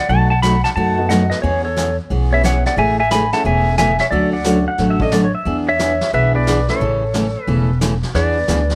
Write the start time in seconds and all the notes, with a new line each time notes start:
0.09 B1 B2 F#3 A3 D#4 F#4 F#5 A5, brush sweep
0.30 F#5 A5
0.42 B2 F#3 A3 D#4 F#4 F#5 B5, snare, hi-hat pedal
0.64 F#5 A5, snare
0.76 F#2 B2 F#3 A3 D#4 F#4 F#5 A5, brush sweep
0.97 A3 B3 D#4 F#4
1.09 B2 F#3 A3 D#4 F#4 D#5 F#5, snare, hi-hat pedal
1.30 B4 D#5, snare
1.42 E2 E3 B3 C#4 G#4 C#5, brush sweep
1.65 A4 C#5
1.76 E3 B3 C#4 G#4, snare, hi-hat pedal
2.10 B1 E3 B3 C#4 G#4, brush sweep
2.32 B3 C#4 E4 G#4 C#5 E5
2.43 E3 B3 C#4 G#4 C#5 F#5, snare, hi-hat pedal
2.66 D5 F#5, snare
2.77 A1 C#3 E3 A3 C#4 G#4 E5 G#5, brush sweep
3.00 E5 G#5
3.11 C#3 E3 A3 C#4 G#4 G#5 B5, snare, hi-hat pedal
3.32 A3 C#4 E4 G#4 F#5 A5, snare
3.44 E1 C#3 E3 A3 C#4 G#4 E5 G#5, brush sweep
3.78 C#3 E3 A3 C#4 G#4 E5 G#5, snare, hi-hat pedal
3.99 C#5 E5, snare
4.11 D2 D3 F#3 A3 C#4 F#4 A4 D5, brush sweep
4.33 D5 F#5
4.44 D3 F#3 A3 C#4 D4 F#4, snare, hi-hat pedal
4.68 F#5
4.78 A1 D3 F#3 A3 C#4 F#4, brush sweep, snare
4.90 E5
5.00 A3 C#4 D4 A4 D#5, kick
5.12 D3 F#3 A3 C#4 F#4 D5, snare, hi-hat pedal
5.24 C#5
5.35 E5
5.45 E2 E3 B3 D4 G#4, brush sweep
5.68 C#5 E5
5.79 E3 B3 D4 G#4, snare, hi-hat pedal
6.01 snare
6.13 B1 E3 B3 D4 G#4 B4 E5, brush sweep
6.34 B3 D4 E4 G#4 B4 D5
6.47 E3 B3 D4 G#4, snare, hi-hat pedal
6.69 A3 C#4 E4 A4 B4 C#5, snare
6.80 A1 C#3 E3 A3 C#4 A4, brush sweep
7.14 C#3 E3 A3 C#4 A4, snare, hi-hat pedal
7.44 E1 C#3 E3 A3 B4, brush sweep
7.48 C#4 A4
7.81 C#3 E3 A3 C#4 A4, snare, hi-hat pedal
8.03 snare
8.14 E2 E3 B3 D4 G#4 B4 D5, brush sweep, snare
8.48 D2 E3 B3 D4 G#4, snare, hi-hat pedal
8.70 snare